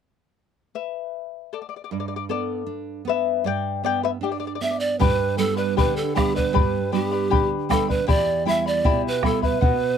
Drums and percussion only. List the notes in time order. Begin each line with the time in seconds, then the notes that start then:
5.01 bombo low
5.78 bombo low
6.17 bombo rim, bombo low
6.38 bombo low
6.56 bombo low
7.33 bombo low
7.71 bombo rim, bombo low
7.90 bombo low
8.09 bombo low
8.85 bombo low
9.23 bombo rim, bombo low
9.43 bombo low
9.62 bombo low